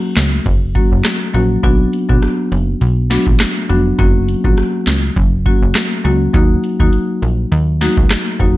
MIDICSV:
0, 0, Header, 1, 4, 480
1, 0, Start_track
1, 0, Key_signature, 6, "major"
1, 0, Tempo, 588235
1, 1334, Time_signature, 4, 2, 24, 8
1, 6995, End_track
2, 0, Start_track
2, 0, Title_t, "Marimba"
2, 0, Program_c, 0, 12
2, 612, Note_on_c, 0, 54, 75
2, 614, Note_on_c, 0, 58, 69
2, 616, Note_on_c, 0, 61, 69
2, 617, Note_on_c, 0, 66, 85
2, 741, Note_off_c, 0, 54, 0
2, 742, Note_off_c, 0, 58, 0
2, 742, Note_off_c, 0, 61, 0
2, 743, Note_off_c, 0, 66, 0
2, 1092, Note_on_c, 0, 54, 74
2, 1094, Note_on_c, 0, 58, 70
2, 1096, Note_on_c, 0, 61, 69
2, 1097, Note_on_c, 0, 66, 83
2, 1316, Note_off_c, 0, 54, 0
2, 1317, Note_off_c, 0, 58, 0
2, 1318, Note_off_c, 0, 61, 0
2, 1319, Note_off_c, 0, 66, 0
2, 1332, Note_on_c, 0, 54, 93
2, 1334, Note_on_c, 0, 59, 85
2, 1335, Note_on_c, 0, 62, 83
2, 1337, Note_on_c, 0, 66, 98
2, 1460, Note_off_c, 0, 54, 0
2, 1461, Note_off_c, 0, 59, 0
2, 1462, Note_off_c, 0, 62, 0
2, 1463, Note_off_c, 0, 66, 0
2, 1707, Note_on_c, 0, 54, 79
2, 1708, Note_on_c, 0, 59, 74
2, 1710, Note_on_c, 0, 62, 72
2, 1712, Note_on_c, 0, 66, 83
2, 1808, Note_off_c, 0, 54, 0
2, 1809, Note_off_c, 0, 59, 0
2, 1809, Note_off_c, 0, 62, 0
2, 1810, Note_off_c, 0, 66, 0
2, 2532, Note_on_c, 0, 54, 75
2, 2534, Note_on_c, 0, 59, 71
2, 2535, Note_on_c, 0, 62, 70
2, 2537, Note_on_c, 0, 66, 84
2, 2661, Note_off_c, 0, 54, 0
2, 2662, Note_off_c, 0, 59, 0
2, 2662, Note_off_c, 0, 62, 0
2, 2663, Note_off_c, 0, 66, 0
2, 3012, Note_on_c, 0, 54, 75
2, 3014, Note_on_c, 0, 59, 66
2, 3016, Note_on_c, 0, 62, 70
2, 3017, Note_on_c, 0, 66, 84
2, 3236, Note_off_c, 0, 54, 0
2, 3237, Note_off_c, 0, 59, 0
2, 3238, Note_off_c, 0, 62, 0
2, 3239, Note_off_c, 0, 66, 0
2, 3253, Note_on_c, 0, 54, 94
2, 3254, Note_on_c, 0, 58, 85
2, 3256, Note_on_c, 0, 61, 85
2, 3257, Note_on_c, 0, 66, 105
2, 3381, Note_off_c, 0, 54, 0
2, 3382, Note_off_c, 0, 58, 0
2, 3382, Note_off_c, 0, 61, 0
2, 3383, Note_off_c, 0, 66, 0
2, 3626, Note_on_c, 0, 54, 77
2, 3628, Note_on_c, 0, 58, 75
2, 3630, Note_on_c, 0, 61, 70
2, 3631, Note_on_c, 0, 66, 88
2, 3728, Note_off_c, 0, 54, 0
2, 3729, Note_off_c, 0, 58, 0
2, 3729, Note_off_c, 0, 61, 0
2, 3730, Note_off_c, 0, 66, 0
2, 4452, Note_on_c, 0, 54, 74
2, 4454, Note_on_c, 0, 58, 71
2, 4455, Note_on_c, 0, 61, 72
2, 4457, Note_on_c, 0, 66, 83
2, 4581, Note_off_c, 0, 54, 0
2, 4581, Note_off_c, 0, 58, 0
2, 4582, Note_off_c, 0, 61, 0
2, 4583, Note_off_c, 0, 66, 0
2, 4931, Note_on_c, 0, 54, 74
2, 4933, Note_on_c, 0, 58, 70
2, 4935, Note_on_c, 0, 61, 70
2, 4936, Note_on_c, 0, 66, 83
2, 5156, Note_off_c, 0, 54, 0
2, 5157, Note_off_c, 0, 58, 0
2, 5158, Note_off_c, 0, 61, 0
2, 5159, Note_off_c, 0, 66, 0
2, 5171, Note_on_c, 0, 54, 88
2, 5173, Note_on_c, 0, 58, 88
2, 5175, Note_on_c, 0, 63, 82
2, 5176, Note_on_c, 0, 66, 106
2, 5300, Note_off_c, 0, 54, 0
2, 5301, Note_off_c, 0, 58, 0
2, 5302, Note_off_c, 0, 63, 0
2, 5303, Note_off_c, 0, 66, 0
2, 5546, Note_on_c, 0, 54, 76
2, 5548, Note_on_c, 0, 58, 74
2, 5549, Note_on_c, 0, 63, 71
2, 5551, Note_on_c, 0, 66, 87
2, 5647, Note_off_c, 0, 54, 0
2, 5648, Note_off_c, 0, 58, 0
2, 5649, Note_off_c, 0, 63, 0
2, 5650, Note_off_c, 0, 66, 0
2, 6372, Note_on_c, 0, 54, 73
2, 6374, Note_on_c, 0, 58, 69
2, 6376, Note_on_c, 0, 63, 69
2, 6377, Note_on_c, 0, 66, 84
2, 6501, Note_off_c, 0, 54, 0
2, 6502, Note_off_c, 0, 58, 0
2, 6502, Note_off_c, 0, 63, 0
2, 6503, Note_off_c, 0, 66, 0
2, 6852, Note_on_c, 0, 54, 74
2, 6854, Note_on_c, 0, 58, 67
2, 6856, Note_on_c, 0, 63, 67
2, 6857, Note_on_c, 0, 66, 84
2, 6995, Note_off_c, 0, 54, 0
2, 6995, Note_off_c, 0, 58, 0
2, 6995, Note_off_c, 0, 63, 0
2, 6995, Note_off_c, 0, 66, 0
2, 6995, End_track
3, 0, Start_track
3, 0, Title_t, "Analog synth bass"
3, 0, Program_c, 1, 38
3, 134, Note_on_c, 1, 37, 88
3, 326, Note_off_c, 1, 37, 0
3, 374, Note_on_c, 1, 30, 105
3, 673, Note_off_c, 1, 30, 0
3, 749, Note_on_c, 1, 30, 90
3, 833, Note_off_c, 1, 30, 0
3, 1094, Note_on_c, 1, 34, 92
3, 1286, Note_off_c, 1, 34, 0
3, 1334, Note_on_c, 1, 35, 104
3, 1526, Note_off_c, 1, 35, 0
3, 1708, Note_on_c, 1, 35, 89
3, 1793, Note_off_c, 1, 35, 0
3, 2055, Note_on_c, 1, 30, 93
3, 2246, Note_off_c, 1, 30, 0
3, 2294, Note_on_c, 1, 35, 102
3, 2593, Note_off_c, 1, 35, 0
3, 2666, Note_on_c, 1, 34, 90
3, 2752, Note_off_c, 1, 34, 0
3, 3014, Note_on_c, 1, 29, 87
3, 3206, Note_off_c, 1, 29, 0
3, 3254, Note_on_c, 1, 30, 114
3, 3553, Note_off_c, 1, 30, 0
3, 3628, Note_on_c, 1, 34, 92
3, 3712, Note_off_c, 1, 34, 0
3, 3974, Note_on_c, 1, 37, 94
3, 4166, Note_off_c, 1, 37, 0
3, 4213, Note_on_c, 1, 30, 111
3, 4513, Note_off_c, 1, 30, 0
3, 4589, Note_on_c, 1, 30, 95
3, 4673, Note_off_c, 1, 30, 0
3, 4934, Note_on_c, 1, 37, 93
3, 5126, Note_off_c, 1, 37, 0
3, 5174, Note_on_c, 1, 39, 110
3, 5366, Note_off_c, 1, 39, 0
3, 5548, Note_on_c, 1, 39, 83
3, 5633, Note_off_c, 1, 39, 0
3, 5894, Note_on_c, 1, 34, 86
3, 6086, Note_off_c, 1, 34, 0
3, 6134, Note_on_c, 1, 39, 104
3, 6433, Note_off_c, 1, 39, 0
3, 6506, Note_on_c, 1, 37, 90
3, 6592, Note_off_c, 1, 37, 0
3, 6852, Note_on_c, 1, 29, 88
3, 6995, Note_off_c, 1, 29, 0
3, 6995, End_track
4, 0, Start_track
4, 0, Title_t, "Drums"
4, 135, Note_on_c, 9, 42, 56
4, 136, Note_on_c, 9, 38, 114
4, 139, Note_on_c, 9, 39, 84
4, 216, Note_off_c, 9, 42, 0
4, 217, Note_off_c, 9, 38, 0
4, 220, Note_off_c, 9, 39, 0
4, 374, Note_on_c, 9, 36, 86
4, 375, Note_on_c, 9, 42, 70
4, 455, Note_off_c, 9, 36, 0
4, 456, Note_off_c, 9, 42, 0
4, 612, Note_on_c, 9, 42, 49
4, 615, Note_on_c, 9, 36, 99
4, 694, Note_off_c, 9, 42, 0
4, 696, Note_off_c, 9, 36, 0
4, 854, Note_on_c, 9, 37, 104
4, 854, Note_on_c, 9, 38, 125
4, 855, Note_on_c, 9, 42, 76
4, 856, Note_on_c, 9, 39, 99
4, 935, Note_off_c, 9, 37, 0
4, 935, Note_off_c, 9, 38, 0
4, 937, Note_off_c, 9, 42, 0
4, 938, Note_off_c, 9, 39, 0
4, 1095, Note_on_c, 9, 42, 55
4, 1177, Note_off_c, 9, 42, 0
4, 1334, Note_on_c, 9, 36, 116
4, 1334, Note_on_c, 9, 42, 73
4, 1416, Note_off_c, 9, 36, 0
4, 1416, Note_off_c, 9, 42, 0
4, 1576, Note_on_c, 9, 42, 55
4, 1658, Note_off_c, 9, 42, 0
4, 1708, Note_on_c, 9, 36, 93
4, 1790, Note_off_c, 9, 36, 0
4, 1813, Note_on_c, 9, 42, 73
4, 1816, Note_on_c, 9, 37, 67
4, 1895, Note_off_c, 9, 42, 0
4, 1897, Note_off_c, 9, 37, 0
4, 2055, Note_on_c, 9, 42, 57
4, 2136, Note_off_c, 9, 42, 0
4, 2294, Note_on_c, 9, 42, 75
4, 2376, Note_off_c, 9, 42, 0
4, 2532, Note_on_c, 9, 42, 49
4, 2536, Note_on_c, 9, 38, 65
4, 2614, Note_off_c, 9, 42, 0
4, 2617, Note_off_c, 9, 38, 0
4, 2666, Note_on_c, 9, 36, 104
4, 2748, Note_off_c, 9, 36, 0
4, 2774, Note_on_c, 9, 37, 101
4, 2774, Note_on_c, 9, 38, 119
4, 2775, Note_on_c, 9, 42, 78
4, 2776, Note_on_c, 9, 39, 100
4, 2855, Note_off_c, 9, 37, 0
4, 2855, Note_off_c, 9, 38, 0
4, 2857, Note_off_c, 9, 42, 0
4, 2858, Note_off_c, 9, 39, 0
4, 3015, Note_on_c, 9, 42, 57
4, 3097, Note_off_c, 9, 42, 0
4, 3254, Note_on_c, 9, 36, 119
4, 3254, Note_on_c, 9, 42, 74
4, 3335, Note_off_c, 9, 42, 0
4, 3336, Note_off_c, 9, 36, 0
4, 3495, Note_on_c, 9, 42, 56
4, 3577, Note_off_c, 9, 42, 0
4, 3628, Note_on_c, 9, 36, 94
4, 3709, Note_off_c, 9, 36, 0
4, 3732, Note_on_c, 9, 42, 73
4, 3735, Note_on_c, 9, 37, 68
4, 3814, Note_off_c, 9, 42, 0
4, 3817, Note_off_c, 9, 37, 0
4, 3974, Note_on_c, 9, 42, 60
4, 3975, Note_on_c, 9, 38, 110
4, 3978, Note_on_c, 9, 39, 86
4, 4056, Note_off_c, 9, 42, 0
4, 4057, Note_off_c, 9, 38, 0
4, 4059, Note_off_c, 9, 39, 0
4, 4213, Note_on_c, 9, 36, 89
4, 4214, Note_on_c, 9, 42, 72
4, 4295, Note_off_c, 9, 36, 0
4, 4296, Note_off_c, 9, 42, 0
4, 4452, Note_on_c, 9, 42, 49
4, 4454, Note_on_c, 9, 36, 100
4, 4534, Note_off_c, 9, 42, 0
4, 4536, Note_off_c, 9, 36, 0
4, 4693, Note_on_c, 9, 37, 103
4, 4693, Note_on_c, 9, 38, 122
4, 4695, Note_on_c, 9, 42, 77
4, 4696, Note_on_c, 9, 39, 99
4, 4775, Note_off_c, 9, 37, 0
4, 4775, Note_off_c, 9, 38, 0
4, 4776, Note_off_c, 9, 42, 0
4, 4778, Note_off_c, 9, 39, 0
4, 4935, Note_on_c, 9, 42, 55
4, 5017, Note_off_c, 9, 42, 0
4, 5174, Note_on_c, 9, 36, 121
4, 5174, Note_on_c, 9, 42, 74
4, 5256, Note_off_c, 9, 36, 0
4, 5256, Note_off_c, 9, 42, 0
4, 5416, Note_on_c, 9, 42, 54
4, 5497, Note_off_c, 9, 42, 0
4, 5548, Note_on_c, 9, 36, 95
4, 5629, Note_off_c, 9, 36, 0
4, 5653, Note_on_c, 9, 42, 74
4, 5735, Note_off_c, 9, 42, 0
4, 5895, Note_on_c, 9, 42, 58
4, 5976, Note_off_c, 9, 42, 0
4, 6134, Note_on_c, 9, 42, 72
4, 6216, Note_off_c, 9, 42, 0
4, 6372, Note_on_c, 9, 42, 51
4, 6376, Note_on_c, 9, 38, 67
4, 6454, Note_off_c, 9, 42, 0
4, 6458, Note_off_c, 9, 38, 0
4, 6506, Note_on_c, 9, 36, 102
4, 6588, Note_off_c, 9, 36, 0
4, 6614, Note_on_c, 9, 37, 100
4, 6614, Note_on_c, 9, 38, 126
4, 6615, Note_on_c, 9, 42, 74
4, 6617, Note_on_c, 9, 39, 100
4, 6695, Note_off_c, 9, 37, 0
4, 6695, Note_off_c, 9, 38, 0
4, 6697, Note_off_c, 9, 42, 0
4, 6698, Note_off_c, 9, 39, 0
4, 6852, Note_on_c, 9, 36, 86
4, 6855, Note_on_c, 9, 42, 53
4, 6934, Note_off_c, 9, 36, 0
4, 6937, Note_off_c, 9, 42, 0
4, 6995, End_track
0, 0, End_of_file